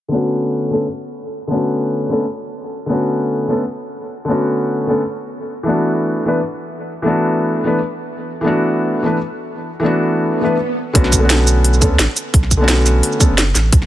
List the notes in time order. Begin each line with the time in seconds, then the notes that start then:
0.08 D3 A3 B3
0.13 C#4 F#4
0.70 D3 A3 B3 C#4 A4
1.47 D3 A3 B3
1.52 C#4 F#4
2.09 D3 A3 B3 C#4 A4
2.86 D3 A3 B3
2.91 C#4 F#4
3.48 D3 A3 B3 C#4 A4
4.25 D3 A3 B3
4.29 C#4 F#4
4.87 D3 A3 B3 C#4 A4
5.63 E3 A3 B3
5.68 D4 F#4
6.25 E3 A3 B3 D4 B4
7.02 E3 A3 B3
7.07 D4 F#4
7.64 E3 A3 B3 D4 B4
8.41 E3 A3 B3
8.46 D4 F#4
9.03 E3 A3 B3 D4 B4
9.80 E3 A3 B3
9.84 D4 F#4
10.26 swell
10.41 E3 A3 B3 D4 B4
10.93 B1 D3 A3 B3 C#4 F#4, kick, closed hi-hat
11.04 snare
11.12 kick, closed hi-hat, shaker
11.18 D3 A3 B3
11.23 C#4 F#4
11.30 snare, closed hi-hat
11.47 closed hi-hat, shaker
11.64 closed hi-hat
11.74 shaker
11.80 D2 D3 A3 B3 C#4 A4, kick, closed hi-hat, shaker
11.99 A1, snare, closed hi-hat
12.16 closed hi-hat, shaker
12.34 B1, kick, closed hi-hat
12.43 snare
12.51 kick, closed hi-hat, shaker
12.57 D3 A3 B3
12.62 C#4 F#4
12.68 snare, closed hi-hat
12.86 snare, closed hi-hat, shaker
13.03 closed hi-hat
13.12 shaker
13.19 D3 A3 B3 C#4 A4, kick, closed hi-hat, shaker
13.30 F#1
13.38 snare, closed hi-hat
13.55 A1, snare, closed hi-hat, shaker
13.72 B1, kick, closed hi-hat
13.82 snare